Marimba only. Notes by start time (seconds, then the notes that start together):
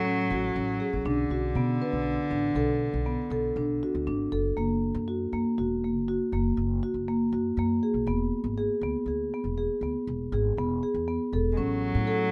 0.05 C#4
0.32 F#4
0.56 C#4
0.80 G#4
1.06 D4
1.31 F#4
1.57 B3
1.82 B4
2.31 D4
2.56 A4
3.06 B3
3.31 A4
3.57 D4
3.83 F#4
4.07 D4
4.32 A4
4.57 A#3
5.08 F#4
5.33 A#3
5.58 F#4
5.84 A#3
6.08 F#4
6.33 A#3
6.83 F#4
7.08 A#3
7.33 F#4
7.59 A#3
7.83 G#4
8.08 B3
8.58 G#4
8.83 B3
9.08 G#4
9.34 B3
9.58 G#4
9.83 B3
10.33 G#4
10.58 B3
10.83 G#4
11.08 B3
11.33 A4
11.57 C#4
12.07 A4